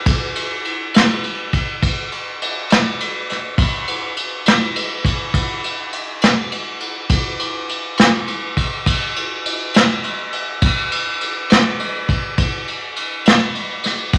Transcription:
0.06 kick, ride
0.35 ride
0.65 ride
0.94 snare, ride
1.24 ride
1.53 kick, ride
1.82 kick, ride
2.12 ride
2.42 ride
2.70 snare, ride
3.00 ride
3.29 snare, ride
3.58 kick, ride
3.88 ride
4.17 ride
4.46 snare, ride
4.76 ride
5.05 kick, ride
5.34 kick, ride
5.64 ride
5.93 ride
6.22 snare, ride
6.52 ride
6.80 ride
7.09 kick, ride
7.39 ride
7.69 ride
7.97 snare, ride
8.28 ride
8.57 kick, ride
8.86 kick, ride
9.16 ride
9.46 ride
9.74 snare, ride
10.04 ride
10.33 ride
10.62 kick, ride
10.92 ride
11.21 ride
11.50 snare, ride
11.80 ride
12.09 kick, ride
12.38 kick, ride
12.68 ride
12.96 ride
13.25 snare, ride
13.55 ride
13.83 snare, ride
14.13 kick, ride

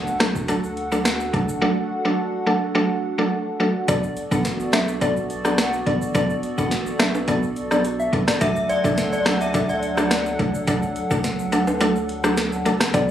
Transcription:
Already playing: C#2 F#3 A3 D4 F#4 A4 F#5
0.07 shaker
0.20 D2 F#3 A3 D4 A4, cross-stick, snare, closed hi-hat
0.35 kick, shaker
0.48 F#3 A3 D4 A4, closed hi-hat, shaker
0.64 shaker
0.77 closed hi-hat
0.92 F#3 A3 D4 A4, shaker
1.05 cross-stick, snare, closed hi-hat, shaker
1.20 shaker
1.33 C#2 F#3 A3 D4 A4, kick, closed hi-hat
1.49 shaker
1.61 F#3 A3 D4 A4
2.05 F#3 A3 D4 A4
2.46 F#3 A3 D4 A4
2.75 F#3 A3 D4 A4
3.18 F#3 A3 D4 A4
3.60 F#3 A3 D4 A4
3.88 B1 F#3 B3 D4 F#4 A4 D5, kick, closed hi-hat, shaker
4.03 shaker
4.17 closed hi-hat, shaker
4.31 A1 F#3 B3 D4 A4 F#5, kick, shaker
4.45 snare, closed hi-hat, shaker
4.60 shaker
4.73 B1 F#3 B3 D4 A4 E5, cross-stick, snare, closed hi-hat, shaker
4.88 shaker
5.01 F#3 B3 D4 A4 D5, kick, closed hi-hat, shaker
5.17 shaker
5.30 closed hi-hat, shaker
5.45 F#3 B3 D4 A4 D5, cross-stick, shaker
5.58 F#5, cross-stick, snare, closed hi-hat, shaker
5.73 shaker
5.86 A1 F#3 B3 D4 A4 D5, kick, closed hi-hat
6.02 shaker
6.15 B1 F#3 B3 D4 A4 D5, kick, closed hi-hat, shaker
6.30 shaker
6.43 closed hi-hat, shaker
6.58 A1 F#3 B3 D4 A4 F#5, kick, shaker
6.71 snare, closed hi-hat, shaker
6.87 shaker
6.99 B1 F#3 B3 D4 A4 E5, cross-stick, snare, closed hi-hat, shaker
7.15 high timbale, shaker
7.28 F#3 B3 D4 A4 D5, kick, closed hi-hat, shaker
7.43 shaker
7.56 closed hi-hat, shaker
7.71 F#3 B3 D4 A4 D5, cross-stick, shaker
7.85 closed hi-hat, shaker
8.00 E5, shaker
8.13 A1 F#3 B3 D4 A4, kick, closed hi-hat
8.28 D5, cross-stick, snare, shaker
8.41 D2 F#3 A3 D4 A4 E5 F#5, kick, closed hi-hat, shaker
8.56 shaker
8.69 D5, closed hi-hat, shaker
8.84 C#2 F#3 A3 D4 A4, kick, shaker
8.98 snare, closed hi-hat, shaker
9.13 D5, shaker
9.26 D2 F#3 A3 D4 A4, cross-stick, snare, closed hi-hat, shaker
9.41 E5, shaker
9.54 F#3 A3 D4 A4, kick, closed hi-hat, shaker
9.69 D5, shaker
9.83 closed hi-hat, shaker
9.97 F#3 A3 D4 A4, cross-stick, shaker
10.11 cross-stick, snare, closed hi-hat, shaker
10.26 shaker
10.39 C#2 F#3 A3 D4 A4, kick, closed hi-hat
10.54 shaker
10.67 D2 F#3 A3 D4 A4, kick, closed hi-hat, shaker
10.82 shaker
10.96 closed hi-hat, shaker
11.11 C#2 F#3 A3 D4 A4, kick, shaker
11.24 snare, closed hi-hat, shaker
11.39 shaker
11.52 D2 F#3 A3 D4 A4, closed hi-hat, shaker
11.67 high timbale, shaker
11.81 F#3 A3 D4 A4, closed hi-hat, shaker
11.96 shaker
12.09 closed hi-hat
12.24 F#3 A3 D4 A4, cross-stick, shaker
12.37 snare, closed hi-hat, shaker
12.52 shaker
12.65 C#2 F#3 A3 D4 A4, closed hi-hat, shaker
12.80 cross-stick, snare, shaker
12.94 B1 F#3 B3 D4 F#4 A4 D5, kick, closed hi-hat, shaker

